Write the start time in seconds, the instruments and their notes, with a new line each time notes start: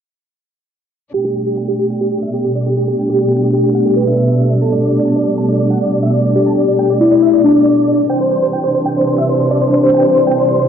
1.14 string section B2 G3 A3 D4, soft synth lead G4, supersaw synth G5, closed hi-hat
1.25 supersaw synth G4, closed hi-hat
1.36 supersaw synth G4, closed hi-hat
1.46 supersaw synth G4, closed hi-hat
1.57 supersaw synth G5, closed hi-hat
1.68 supersaw synth G4
1.79 supersaw synth G4, closed hi-hat
1.90 supersaw synth G5, closed hi-hat
2.01 supersaw synth G4, closed hi-hat
2.12 supersaw synth G4, closed hi-hat
2.23 supersaw synth E5, closed hi-hat
2.33 supersaw synth G4, closed hi-hat
2.44 supersaw synth G4, closed hi-hat
2.55 supersaw synth D5
2.66 supersaw synth G4, closed hi-hat
2.77 supersaw synth G4, closed hi-hat
2.88 soft synth lead G4, supersaw synth G4, closed hi-hat
2.99 supersaw synth G5, closed hi-hat
3.09 supersaw synth G4, closed hi-hat
3.20 supersaw synth G4, closed hi-hat
3.31 supersaw synth G5, closed hi-hat
3.42 supersaw synth G4, closed hi-hat
3.53 soft synth lead G4, supersaw synth G4, closed hi-hat
3.64 supersaw synth G4, closed hi-hat
3.75 supersaw synth F#5, closed hi-hat
3.85 supersaw synth G4, closed hi-hat
3.96 supersaw synth G4, soft synth lead B4, closed hi-hat
4.07 supersaw synth E5, closed hi-hat
4.18 closed hi-hat
4.29 closed hi-hat
4.40 closed hi-hat
4.51 closed hi-hat
4.62 soft synth lead A4, supersaw synth A5, closed hi-hat
4.72 supersaw synth D5, closed hi-hat
4.83 supersaw synth D5, closed hi-hat
4.94 supersaw synth D5, closed hi-hat
5.05 supersaw synth A5, closed hi-hat
5.16 supersaw synth D5
5.27 supersaw synth D5, closed hi-hat
5.38 supersaw synth A5, closed hi-hat
5.49 supersaw synth D5, closed hi-hat
5.59 supersaw synth D5, closed hi-hat
5.70 supersaw synth F#5, closed hi-hat
5.81 supersaw synth D5, closed hi-hat
5.92 supersaw synth D5, closed hi-hat
6.03 supersaw synth E5
6.14 supersaw synth D5, closed hi-hat
6.25 supersaw synth D5, closed hi-hat
6.35 soft synth lead G4, supersaw synth D5, closed hi-hat
6.46 supersaw synth A5, closed hi-hat
6.57 supersaw synth D5, closed hi-hat
6.68 supersaw synth D5, closed hi-hat
6.79 supersaw synth G5, closed hi-hat
6.90 supersaw synth D5, closed hi-hat
7.01 soft synth lead E4, supersaw synth D5, closed hi-hat
7.12 supersaw synth D5, closed hi-hat
7.22 supersaw synth E5, closed hi-hat
7.33 supersaw synth D5, closed hi-hat
7.44 soft synth lead D4, supersaw synth D5, closed hi-hat
7.55 supersaw synth D5, closed hi-hat
7.66 closed hi-hat
7.77 closed hi-hat
7.88 closed hi-hat
7.99 closed hi-hat
8.09 string section C3 E3 G3 D4, soft synth lead C5, supersaw synth G5, closed hi-hat
8.20 supersaw synth C5, closed hi-hat
8.31 supersaw synth C5, closed hi-hat
8.42 supersaw synth C5, closed hi-hat
8.53 supersaw synth G5, closed hi-hat
8.64 supersaw synth C5
8.75 supersaw synth C5, closed hi-hat
8.86 supersaw synth G5, closed hi-hat
8.96 supersaw synth C5, closed hi-hat
9.07 supersaw synth C5, closed hi-hat
9.18 supersaw synth E5, closed hi-hat
9.29 supersaw synth C5, closed hi-hat
9.40 supersaw synth C5, closed hi-hat
9.51 supersaw synth D5
9.62 supersaw synth C5, closed hi-hat
9.72 supersaw synth C5, closed hi-hat
9.83 soft synth lead C5, supersaw synth C5, closed hi-hat
9.94 supersaw synth G5, closed hi-hat
10.05 supersaw synth C5, closed hi-hat
10.16 supersaw synth C5, closed hi-hat
10.27 supersaw synth G5, closed hi-hat
10.38 supersaw synth C5, closed hi-hat
10.48 soft synth lead C5, supersaw synth C5, closed hi-hat
10.59 supersaw synth C5, closed hi-hat